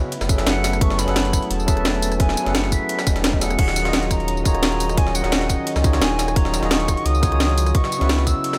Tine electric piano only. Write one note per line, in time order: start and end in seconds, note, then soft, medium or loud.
0.00 0.14 C#3 medium
0.00 0.14 C#4 medium
0.00 0.14 E4 medium
0.00 0.14 F#4 medium
0.00 0.14 B4 medium
0.00 0.14 D#5 loud
0.00 0.14 E5 loud
0.28 0.34 F#3 medium
0.28 0.35 C#4 medium
0.28 0.36 G#4 medium
0.28 0.36 A4 medium
0.28 0.37 B4 medium
0.28 0.37 E5 medium
0.35 0.78 F#3 medium
0.35 0.78 C#4 medium
0.35 0.79 G#4 medium
0.39 0.80 A4 medium
0.39 0.80 B4 medium
0.39 0.81 E5 medium
0.80 1.03 F#3 medium
0.80 1.05 C#4 medium
0.80 1.05 G#4 medium
0.80 1.06 A4 medium
0.80 1.06 B4 medium
0.80 1.06 E5 medium
1.04 1.65 F#3 medium
1.04 1.65 C#4 medium
1.04 1.66 G#4 medium
1.08 1.67 A4 medium
1.08 1.67 B4 medium
1.08 1.68 F#5 loud
1.66 1.72 F#3 medium
1.66 1.74 C#4 medium
1.66 1.75 G#4 medium
1.66 1.75 A4 medium
1.66 1.75 B4 medium
1.66 1.76 E5 loud
1.74 2.16 F#3 medium
1.74 2.17 C#4 medium
1.74 2.18 F#4 medium
1.78 2.18 A4 medium
1.78 2.19 B4 medium
1.78 2.20 E5 medium
2.18 2.42 F#3 medium
2.18 2.43 C#4 medium
2.18 2.44 G#4 medium
2.18 2.44 A4 medium
2.18 2.45 B4 medium
2.18 2.45 E5 medium
2.43 3.03 F#3 medium
2.43 3.04 C#4 medium
2.43 3.05 G#4 medium
2.47 3.05 A4 medium
2.47 3.06 B4 medium
2.47 3.07 F#5 loud
3.40 3.56 F#3 medium
3.40 3.56 C#4 medium
3.40 3.57 G#4 medium
3.40 3.57 A4 medium
3.40 3.57 B4 medium
3.40 3.58 E5 medium
3.57 3.81 D#3 medium
3.57 3.82 D#4 medium
3.57 3.83 F4 medium
3.57 3.83 F#4 medium
3.57 3.83 G#4 medium
3.57 3.84 C#5 medium
3.82 4.42 D#3 medium
3.82 4.43 D#4 medium
3.82 4.43 F4 medium
3.86 4.44 F#4 medium
3.86 4.45 G#4 medium
3.86 4.45 D#5 loud
4.44 4.50 D#3 medium
4.44 4.51 D#4 medium
4.44 4.52 F4 medium
4.44 4.52 F#4 medium
4.44 4.53 G#4 medium
4.44 4.53 C#5 medium
4.51 4.94 D#3 medium
4.51 4.94 D#4 medium
4.51 4.95 F4 medium
4.51 4.96 F#4 medium
4.56 4.96 G#4 medium
4.56 4.97 C#5 medium
4.96 5.19 D#3 medium
4.96 5.21 D#4 medium
4.96 5.21 F4 medium
4.96 5.22 F#4 medium
4.96 5.22 G#4 medium
4.96 5.22 C#5 medium
5.20 5.81 D#3 medium
5.20 5.82 C#4 medium
5.20 5.81 D#4 medium
5.24 5.83 F#4 medium
5.24 5.83 G#4 medium
5.24 5.84 D#5 loud
5.82 5.89 D#3 medium
5.82 5.90 D#4 medium
5.82 5.91 F4 medium
5.82 5.91 F#4 medium
5.82 5.92 G#4 medium
5.82 5.92 C#5 medium
5.90 6.33 D#3 medium
5.90 6.33 D#4 medium
5.90 6.34 F4 medium
5.94 6.35 F#4 medium
5.94 6.35 G#4 medium
5.94 6.36 C#5 medium
6.35 6.58 D#3 medium
6.35 6.59 D#4 medium
6.35 6.60 F4 medium
6.35 6.61 F#4 medium
6.35 6.61 G#4 medium
6.35 6.61 C#5 medium
6.59 7.20 D#3 medium
6.59 7.20 D#4 medium
6.59 7.21 F4 medium
6.63 7.22 F#4 medium
6.63 7.22 G#4 medium
6.63 7.23 D#5 loud
7.21 7.27 D#3 medium
7.21 7.29 D#4 medium
7.21 7.30 F4 medium
7.21 7.30 F#4 medium
7.21 7.30 G#4 medium
7.21 7.31 C#5 loud
7.29 7.71 D#3 medium
7.29 7.72 D#4 medium
7.29 7.72 F4 medium
7.29 7.73 F#4 medium
7.34 7.74 G#4 medium
7.34 7.75 C#5 medium
7.73 7.97 C#3 medium
7.73 7.98 C#4 medium
7.73 7.99 E4 medium
7.73 7.99 F#4 medium
7.73 8.00 B4 medium
7.73 8.00 D#5 medium
7.98 8.58 C#3 medium
7.98 8.58 C#4 medium
7.98 8.58 E4 medium
7.98 8.58 F#4 medium
8.03 8.58 B4 medium
8.03 8.58 E5 loud